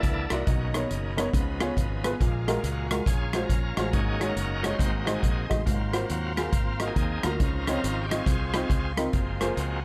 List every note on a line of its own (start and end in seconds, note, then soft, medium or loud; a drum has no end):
0.00 0.26 C#2 medium
0.00 0.26 E3 medium
0.00 0.27 A#3 medium
0.00 0.43 D4 medium
0.00 0.43 E4 medium
0.00 0.32 A4 loud
0.00 0.45 D5 medium
0.00 0.45 E5 medium
0.00 0.45 F#5 medium
0.00 kick medium
0.00 closed hi-hat medium
0.30 0.44 C2 medium
0.30 0.41 A#3 medium
0.30 0.48 A#3 medium
0.30 1.14 D#4 medium
0.30 0.41 E4 medium
0.30 0.41 F#4 medium
0.30 0.87 F#4 medium
0.30 0.41 D5 medium
0.30 cross-stick loud
0.30 closed hi-hat medium
0.46 0.84 B1 medium
0.46 1.13 B2 medium
0.46 1.30 D#3 medium
0.46 1.30 A#3 soft
0.46 1.31 C#4 medium
0.46 1.32 C#5 medium
0.46 1.32 D#5 medium
0.46 2.17 B5 medium
0.46 kick loud
0.46 closed hi-hat medium
0.74 0.84 B3 medium
0.74 0.84 D#4 medium
0.74 0.84 A#4 medium
0.74 0.84 C#5 medium
0.74 cross-stick loud
0.74 closed hi-hat medium
0.90 1.27 F#1 medium
0.90 closed hi-hat medium
1.17 1.27 B3 medium
1.17 1.28 D#4 medium
1.17 1.27 A#4 medium
1.17 1.28 C#5 medium
1.17 cross-stick loud
1.17 closed hi-hat medium
1.33 1.70 C#2 medium
1.33 2.00 C#3 medium
1.33 2.16 F3 medium
1.33 2.16 B3 soft
1.33 2.16 D#4 medium
1.33 2.19 C#5 medium
1.33 3.91 F5 medium
1.33 4.77 G#5 medium
1.33 kick medium
1.33 closed hi-hat medium
1.61 1.71 B3 medium
1.61 1.71 F4 medium
1.61 1.71 G#4 medium
1.61 1.71 C#5 medium
1.61 cross-stick loud
1.61 closed hi-hat medium
1.77 2.14 G#1 loud
1.77 kick medium
1.77 closed hi-hat medium
2.04 2.14 B3 medium
2.04 2.14 F4 medium
2.04 2.14 G#4 medium
2.04 2.14 B4 medium
2.04 cross-stick loud
2.04 closed hi-hat medium
2.20 2.57 A#1 loud
2.20 2.87 A#2 medium
2.20 2.87 G#3 soft
2.20 2.87 A#3 soft
2.20 2.87 F4 medium
2.20 3.91 A#5 medium
2.20 kick medium
2.20 closed hi-hat medium
2.48 2.58 G#3 medium
2.48 2.58 F4 medium
2.48 2.58 F#4 medium
2.48 2.58 A#4 medium
2.48 cross-stick medium
2.48 closed hi-hat medium
2.63 3.00 C#2 medium
2.63 2.92 F#4 medium
2.63 closed hi-hat medium
2.90 3.01 G#3 medium
2.90 3.01 F4 medium
2.90 3.06 F4 medium
2.90 3.01 F#4 medium
2.90 3.01 A#4 medium
2.90 cross-stick loud
2.90 closed hi-hat medium
3.06 3.43 A#1 medium
3.06 3.42 C#4 medium
3.06 3.41 F4 medium
3.06 3.43 G#4 medium
3.06 kick loud
3.06 closed hi-hat medium
3.33 3.44 G#3 medium
3.33 3.44 F4 medium
3.33 3.44 F#4 medium
3.33 3.44 C5 medium
3.33 cross-stick loud
3.33 closed hi-hat medium
3.43 3.90 C#4 medium
3.43 3.90 F4 medium
3.43 3.76 A#4 medium
3.49 3.73 A#1 medium
3.49 kick medium
3.49 closed hi-hat medium
3.77 3.91 A1 medium
3.77 3.87 G#3 medium
3.77 3.87 F4 medium
3.77 3.87 F#4 medium
3.77 3.94 A#4 medium
3.77 3.87 C5 medium
3.77 cross-stick loud
3.77 closed hi-hat medium
3.91 4.30 G#1 medium
3.91 4.60 G#2 medium
3.91 4.75 A#3 soft
3.91 4.29 C#4 medium
3.91 4.75 D#4 medium
3.91 4.28 F#4 medium
3.91 4.29 G#4 medium
3.91 5.65 D#5 medium
3.91 4.79 C#6 medium
3.91 kick loud
3.91 closed hi-hat medium
4.20 4.30 G#3 medium
4.20 4.30 D#4 medium
4.20 4.31 F#4 medium
4.20 4.31 C#5 medium
4.20 cross-stick medium
4.20 closed hi-hat medium
4.29 4.77 C#4 medium
4.29 4.77 F#4 medium
4.29 4.65 A#4 medium
4.36 4.73 F#1 medium
4.36 closed hi-hat medium
4.63 4.73 G#3 medium
4.63 4.74 D#4 medium
4.63 4.74 F#4 medium
4.63 4.77 C5 loud
4.63 4.74 C#5 medium
4.63 cross-stick loud
4.63 closed hi-hat medium
4.78 5.16 G#1 medium
4.78 5.46 G#2 medium
4.78 5.45 A#3 soft
4.78 5.06 C4 soft
4.78 5.06 D#4 medium
4.78 5.46 F#4 medium
4.78 4.91 C5 medium
4.78 5.65 G#5 medium
4.78 7.36 C6 medium
4.78 kick loud
4.78 closed hi-hat medium
5.06 5.17 G#3 medium
5.06 5.62 C4 medium
5.06 5.62 D#4 medium
5.06 5.17 D#4 medium
5.06 5.17 F#4 medium
5.06 5.47 G#4 medium
5.06 5.17 C5 medium
5.06 cross-stick loud
5.06 closed hi-hat medium
5.23 5.46 A#1 medium
5.23 kick medium
5.23 closed hi-hat medium
5.49 5.64 A1 medium
5.49 5.60 G#3 medium
5.49 5.60 D#4 medium
5.49 5.60 F#4 medium
5.49 5.60 D#5 medium
5.49 kick medium
5.49 cross-stick loud
5.49 closed hi-hat medium
5.66 6.03 G#1 loud
5.66 6.33 G#2 medium
5.66 6.33 F#3 soft
5.66 6.33 A#3 soft
5.66 6.33 C4 soft
5.66 6.33 F4 medium
5.66 7.38 F5 medium
5.66 7.39 A#5 medium
5.66 kick loud
5.66 closed hi-hat medium
5.93 6.03 A#3 medium
5.93 6.04 F4 medium
5.93 6.04 F#4 medium
5.93 6.04 C5 medium
5.93 cross-stick medium
5.93 closed hi-hat medium
6.09 6.47 D#2 medium
6.09 6.38 F#4 medium
6.09 closed hi-hat medium
6.36 7.19 A#3 medium
6.36 6.47 A#3 medium
6.36 6.86 C4 medium
6.36 6.89 F4 medium
6.36 6.47 F4 medium
6.36 6.47 F#4 medium
6.36 6.48 G#4 medium
6.36 cross-stick loud
6.36 closed hi-hat medium
6.53 6.90 G#1 medium
6.53 kick loud
6.53 closed hi-hat medium
6.80 6.91 A#3 medium
6.80 6.91 F4 medium
6.80 6.91 F#4 medium
6.80 6.91 D#5 medium
6.80 cross-stick loud
6.80 closed hi-hat medium
6.87 7.35 C4 medium
6.87 7.22 D#4 medium
6.87 7.24 G#4 medium
6.96 7.19 D#2 medium
6.96 kick medium
6.96 closed hi-hat medium
7.23 7.38 D2 medium
7.23 7.34 A#3 medium
7.23 7.38 D#4 medium
7.23 8.06 F4 medium
7.23 7.34 F4 medium
7.23 7.34 F#4 medium
7.23 7.75 A#4 loud
7.23 7.34 A#4 medium
7.23 cross-stick loud
7.23 closed hi-hat medium
7.39 7.77 C#2 medium
7.39 8.07 C#3 medium
7.39 8.06 F3 soft
7.39 8.06 C4 soft
7.39 8.06 D#4 medium
7.39 9.11 D#5 medium
7.39 9.85 F5 medium
7.39 9.85 C6 medium
7.39 9.11 C#6 medium
7.39 kick loud
7.39 closed hi-hat medium
7.67 7.77 C4 medium
7.67 7.77 D#4 medium
7.67 7.77 F4 medium
7.67 7.78 C#5 medium
7.67 cross-stick medium
7.67 closed hi-hat medium
7.76 8.02 A#4 medium
7.84 8.20 G#1 medium
7.84 closed hi-hat medium
8.01 8.10 G4 medium
8.09 8.93 C4 medium
8.09 8.21 C4 medium
8.09 8.21 D#4 medium
8.09 8.92 F4 medium
8.09 8.21 F4 medium
8.09 8.93 G#4 medium
8.09 8.21 D#5 medium
8.09 cross-stick medium
8.09 closed hi-hat medium
8.26 8.63 C2 medium
8.26 kick loud
8.26 closed hi-hat medium
8.54 8.64 C4 medium
8.54 8.64 D#4 medium
8.54 8.64 F4 medium
8.54 8.64 C5 medium
8.54 cross-stick loud
8.54 closed hi-hat medium
8.70 9.06 C#2 medium
8.70 kick medium
8.70 closed hi-hat medium
8.97 9.07 C4 medium
8.97 9.07 D#4 medium
8.97 9.07 F4 medium
8.97 9.07 A#4 medium
8.97 cross-stick loud
8.97 closed hi-hat medium
9.13 9.50 F#1 loud
9.13 9.80 F3 soft
9.13 9.80 G#3 soft
9.13 9.80 A#3 soft
9.13 9.80 C4 medium
9.13 9.85 G#5 medium
9.13 9.85 A#5 medium
9.13 kick loud
9.13 closed hi-hat medium
9.41 9.51 A#3 medium
9.41 9.51 F4 medium
9.41 9.51 G#4 medium
9.41 9.51 C5 medium
9.41 cross-stick medium
9.41 closed hi-hat medium
9.57 9.85 C#2 medium
9.57 9.85 F#4 medium
9.57 closed hi-hat medium